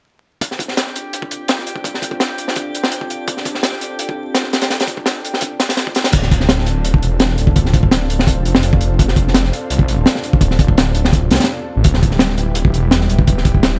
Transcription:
0.41 analog synth pad C4 D4 F4 A4, synth texture G4 G5, kick, closed hi-hat
0.51 snare
0.59 kick, closed hi-hat
0.68 snare
0.77 snare, closed hi-hat
0.87 snare
0.96 closed hi-hat
1.13 closed hi-hat
1.22 kick
1.31 closed hi-hat
1.48 snare, closed hi-hat
1.59 snare
1.67 closed hi-hat
1.76 kick
1.84 kick, closed hi-hat
1.94 snare
2.02 kick, closed hi-hat
2.11 kick
2.20 snare, closed hi-hat
2.38 closed hi-hat
2.48 snare
2.56 kick, closed hi-hat
2.75 closed hi-hat
2.83 snare
2.92 closed hi-hat
3.01 kick
3.10 closed hi-hat
3.28 kick, closed hi-hat
3.37 snare
3.45 kick, closed hi-hat
3.55 snare
3.63 snare, closed hi-hat
3.72 snare
3.81 closed hi-hat
3.99 closed hi-hat
4.09 kick
4.34 snare, closed hi-hat
4.43 snare
4.53 snare, closed hi-hat
4.61 snare, closed hi-hat
4.70 snare, closed hi-hat
4.80 snare, closed hi-hat
4.87 kick, closed hi-hat
4.97 kick
5.06 snare, closed hi-hat
5.25 closed hi-hat
5.34 snare
5.41 kick, closed hi-hat
5.60 snare, closed hi-hat
5.69 snare, closed hi-hat
5.77 snare, closed hi-hat
5.87 kick
5.95 snare, closed hi-hat
6.04 snare, closed hi-hat
6.12 detuned saw bass D1, analog synth pad C4 D4 F4 A4, kick, closed hi-hat, crash
6.23 snare
6.31 kick, closed hi-hat
6.40 snare
6.49 snare, closed hi-hat
6.59 snare
6.66 closed hi-hat
6.85 closed hi-hat
6.94 kick
7.02 detuned saw bass E1, closed hi-hat
7.20 snare, closed hi-hat
7.29 snare
7.38 detuned saw bass D1, closed hi-hat
7.47 kick
7.56 detuned saw bass D1, kick, closed hi-hat
7.66 snare
7.74 kick, closed hi-hat
7.83 kick
7.91 snare, closed hi-hat
8.10 closed hi-hat
8.19 snare
8.27 kick, closed hi-hat
8.45 detuned saw bass F1, closed hi-hat
8.55 snare
8.63 closed hi-hat
8.73 kick
8.81 closed hi-hat
8.99 kick, closed hi-hat
9.08 snare
9.16 kick, closed hi-hat
9.28 snare
9.34 snare, closed hi-hat
9.44 snare
9.53 closed hi-hat
9.70 detuned saw bass C2, closed hi-hat
9.79 kick
9.88 detuned saw bass A1, closed hi-hat
9.98 detuned saw bass D1
10.06 snare, closed hi-hat
10.15 snare
10.24 closed hi-hat
10.33 kick
10.41 detuned saw bass D1, kick, closed hi-hat
10.51 snare
10.59 kick, closed hi-hat
10.68 kick
10.78 snare, closed hi-hat
10.95 closed hi-hat
11.05 snare
11.13 kick, closed hi-hat
11.31 detuned saw bass C2, snare, closed hi-hat
11.35 snare, closed hi-hat
11.40 snare, closed hi-hat
11.44 snare, closed hi-hat
11.76 detuned saw bass A1
11.84 detuned saw bass D1, analog synth pad G3 B3 E4 G4, kick, closed hi-hat
11.94 snare
12.03 kick, closed hi-hat
12.11 snare
12.19 snare, closed hi-hat
12.29 snare
12.38 closed hi-hat
12.55 closed hi-hat
12.65 kick
12.74 detuned saw bass E1, closed hi-hat
12.91 snare, closed hi-hat
13.01 snare
13.10 detuned saw bass D1, closed hi-hat
13.19 kick
13.27 detuned saw bass D1, kick, closed hi-hat
13.37 snare
13.45 kick, closed hi-hat
13.54 kick
13.63 snare, closed hi-hat

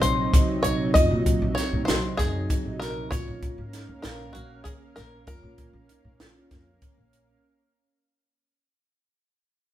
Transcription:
Already playing: analog synth pad C3 F#3 D#4, tine electric piano F#4
0.01 upright bass A#1, five-string banjo C5, closed hi-hat
0.33 tine electric piano D#4, kick, closed hi-hat, shaker
0.63 upright bass A#1, five-string banjo C#5, closed hi-hat
0.94 upright bass F#2, tine electric piano F4, five-string banjo D#5, kick, closed hi-hat, shaker
1.11 upright bass A#2
1.26 kick, closed hi-hat
1.42 upright bass A#1
1.55 tine electric piano D#4, five-string banjo C#5, snare, closed hi-hat
1.73 upright bass A#2
1.85 upright bass A#1, tine electric piano F#4, five-string banjo C5, snare, closed hi-hat, shaker
2.17 upright bass F#2, five-string banjo G#4, kick, snare, closed hi-hat
2.50 tine electric piano D#4, kick, closed hi-hat, shaker
2.65 upright bass A#1
2.80 five-string banjo A#4, snare, closed hi-hat
3.10 upright bass A#1, analog synth pad A#3 C#4 A#4 F5, tine electric piano F4, five-string banjo C#5, kick, closed hi-hat, shaker
3.27 upright bass A#1
3.43 kick, closed hi-hat
3.58 upright bass G#2
3.73 tine electric piano D#4, snare, closed hi-hat
3.89 upright bass D#2
4.02 upright bass A#1, five-string banjo A#4, tine electric piano F5, snare, closed hi-hat, shaker
4.33 upright bass A#1, five-string banjo F#4, closed hi-hat
4.64 tine electric piano C#4, five-string banjo G#4, kick, closed hi-hat, shaker
4.96 upright bass A#1, five-string banjo A#4, snare, closed hi-hat
5.27 upright bass F2, tine electric piano F4, five-string banjo A#4, kick, closed hi-hat, shaker
5.43 upright bass A#2
5.58 kick, closed hi-hat
5.73 upright bass A#1
5.89 tine electric piano D#4, closed hi-hat
6.05 upright bass A#2
6.20 upright bass A#1, tine electric piano F4, snare, closed hi-hat, shaker
6.51 upright bass F2, kick, snare, closed hi-hat
6.82 tine electric piano C#4, kick, closed hi-hat, shaker
6.98 upright bass A#1
7.13 closed hi-hat, shaker

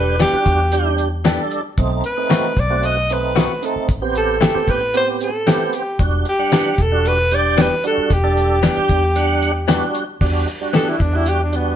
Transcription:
Already playing: fingered electric bass E1, tonewheel organ G3 D4 G4, tenor saxophone B4
0.19 clean electric guitar E3 B3 D4 G4, tenor saxophone G4, snare, closed hi-hat
0.33 tonewheel organ G3 D4 F#4, muted fingered electric bass stroke
0.46 fingered electric bass E2, kick, closed hi-hat
0.72 tonewheel organ G3 D4 G4, closed hi-hat
0.98 closed hi-hat
1.25 clean electric guitar E3 B3 D4 G4, tonewheel organ G3 D4 A4, snare, closed hi-hat
1.51 closed hi-hat
1.78 fingered electric bass B1, tonewheel organ A3 C4 D#4, kick, closed hi-hat
2.04 tenor saxophone B4, closed hi-hat
2.17 tonewheel organ A3 C4 D#4
2.30 clean electric guitar D#3 A3 C4 F#4, snare, closed hi-hat
2.57 fingered electric bass B1, tenor saxophone D5, kick, closed hi-hat
2.70 tonewheel organ A3 C4 F#4
2.83 tenor saxophone D#5, closed hi-hat
3.10 tonewheel organ A3 C4 D#4, tenor saxophone B4, closed hi-hat
3.36 clean electric guitar D#3 A3 C4 F#4, snare, closed hi-hat
3.62 tonewheel organ A3 C4 D#4, tenor saxophone A4, closed hi-hat
3.76 muted fingered electric bass stroke
3.89 fingered electric bass A1, kick, closed hi-hat
4.02 tonewheel organ B3 C4 G4
4.15 tenor saxophone A4, closed hi-hat
4.41 clean electric guitar E3 A3 C4 G4, snare, closed hi-hat
4.54 tonewheel organ B3 C4 G4, muted fingered electric bass stroke
4.68 fingered electric bass A2, tenor saxophone B4, kick, closed hi-hat
4.94 tonewheel organ B3 C4 G4, tenor saxophone C5, closed hi-hat
5.21 tenor saxophone A4, closed hi-hat
5.46 clean electric guitar E3 A3 C4 G4, tonewheel organ B3 C4 G4, snare, closed hi-hat
5.73 tenor saxophone G4, closed hi-hat
5.99 fingered electric bass E1, tonewheel organ G3 D4 F#4, kick, closed hi-hat
6.25 tenor saxophone G4, closed hi-hat
6.39 tonewheel organ G3 D4 F#5
6.52 clean electric guitar E3 B3 D4 G4, snare, closed hi-hat
6.78 fingered electric bass E1, tenor saxophone A4, kick, closed hi-hat
6.92 tonewheel organ G3 D4 F#4
7.05 tenor saxophone B4, closed hi-hat
7.31 tonewheel organ G3 D4 G4, tenor saxophone D5, closed hi-hat
7.57 clean electric guitar E3 B3 D4 G4, tenor saxophone B4, snare, closed hi-hat
7.84 tonewheel organ G3 D4 F#4, tenor saxophone A4, closed hi-hat
7.98 muted fingered electric bass stroke
8.10 fingered electric bass E1, tenor saxophone G4, kick, closed hi-hat
8.24 tonewheel organ G3 D4 A4
8.37 closed hi-hat
8.63 clean electric guitar E3 B3 D4 G4, snare, closed hi-hat
8.76 tonewheel organ G3 D4 G4, muted fingered electric bass stroke
8.89 fingered electric bass E2, kick, closed hi-hat
9.16 tonewheel organ G3 D4 F#5, closed hi-hat
9.42 closed hi-hat
9.68 clean electric guitar E3 B3 D4 G4, tonewheel organ G3 D4 F#4, snare, closed hi-hat
9.95 closed hi-hat
10.21 fingered electric bass E2, tonewheel organ G3 D4 F#4, kick, crash
10.47 closed hi-hat
10.61 tonewheel organ G3 D4 F#4
10.73 clean electric guitar E3 B3 D4 G4, tenor saxophone A4, snare, closed hi-hat
10.89 tenor saxophone E4
11.00 fingered electric bass E2, tenor saxophone D4, kick, closed hi-hat
11.13 tonewheel organ G3 D4 F#4, tenor saxophone E4
11.26 tenor saxophone G4, closed hi-hat
11.43 tenor saxophone D4
11.53 tonewheel organ G3 D4 F#4, tenor saxophone B3, closed hi-hat

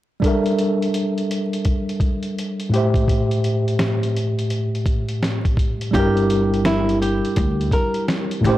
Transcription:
0.20 tine electric piano G3 D4, kick
0.24 tine electric piano A4 A#4 E5, closed hi-hat
0.46 closed hi-hat
0.59 closed hi-hat
0.82 closed hi-hat
0.94 closed hi-hat
1.18 closed hi-hat
1.31 closed hi-hat
1.53 closed hi-hat
1.65 kick, closed hi-hat
1.89 closed hi-hat
2.00 kick, closed hi-hat
2.23 closed hi-hat
2.39 closed hi-hat
2.60 closed hi-hat
2.70 tine electric piano A2 A3
2.74 tine electric piano G4 C5, closed hi-hat
2.78 tine electric piano E5
2.94 kick, closed hi-hat
3.08 kick, closed hi-hat
3.31 closed hi-hat
3.44 closed hi-hat
3.68 closed hi-hat
3.79 snare, closed hi-hat
4.03 closed hi-hat
4.17 closed hi-hat
4.39 closed hi-hat
4.50 closed hi-hat
4.75 closed hi-hat
4.86 kick, closed hi-hat
5.08 closed hi-hat
5.23 snare, closed hi-hat
5.45 kick, closed hi-hat
5.57 kick, closed hi-hat
5.81 closed hi-hat
5.91 upright bass G1, tine electric piano G3 D4 E4, nylon-string guitar G4, kick, closed hi-hat
5.97 tine electric piano G4 A#4
6.17 closed hi-hat
6.30 closed hi-hat
6.54 closed hi-hat
6.65 nylon-string guitar E4, snare, closed hi-hat
6.89 closed hi-hat
7.02 nylon-string guitar G4, closed hi-hat
7.25 closed hi-hat
7.36 upright bass D2, kick, closed hi-hat
7.61 closed hi-hat
7.71 nylon-string guitar A#4, kick, closed hi-hat
7.94 closed hi-hat
8.08 snare, closed hi-hat
8.31 closed hi-hat
8.41 upright bass A1, tine electric piano A2 A3 E4
8.45 tine electric piano G4 C5, closed hi-hat

